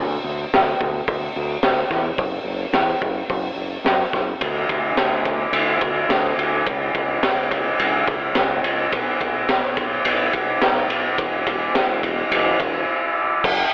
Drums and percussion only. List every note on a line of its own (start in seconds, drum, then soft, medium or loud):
0.54 snare loud
0.54 open hi-hat medium
0.81 kick medium
1.08 kick loud
1.08 open hi-hat medium
1.63 snare loud
1.63 open hi-hat medium
1.91 kick medium
1.91 snare soft
2.18 kick loud
2.18 open hi-hat medium
2.73 snare loud
2.73 open hi-hat medium
3.02 kick medium
3.30 kick loud
3.30 open hi-hat medium
3.86 snare loud
3.86 open hi-hat medium
4.13 kick medium
4.13 snare soft
4.41 kick loud
4.41 ride medium
4.69 kick medium
4.69 ride medium
4.97 snare loud
4.97 ride medium
5.25 kick medium
5.25 ride medium
5.53 ride loud
5.81 kick medium
5.81 ride medium
6.10 snare loud
6.10 ride loud
6.39 ride medium
6.66 kick loud
6.66 ride loud
6.95 kick medium
6.95 ride medium
7.23 snare loud
7.23 ride medium
7.51 kick medium
7.51 ride medium
7.80 ride medium
8.07 kick medium
8.07 ride medium
8.35 snare loud
8.35 ride medium
8.64 ride medium
8.92 kick loud
8.92 ride medium
9.21 kick medium
9.21 ride medium
9.49 snare loud
9.49 ride medium
9.77 kick medium
9.77 ride medium
10.05 ride medium
10.33 kick medium
10.33 ride medium
10.61 snare loud
10.61 ride medium
10.90 ride medium
11.18 kick loud
11.18 ride loud
11.47 kick medium
11.47 ride medium
11.75 snare loud
11.75 ride medium
12.03 kick medium
12.03 ride medium
12.32 ride medium
12.60 kick medium
12.60 ride medium
13.44 kick loud
13.44 crash loud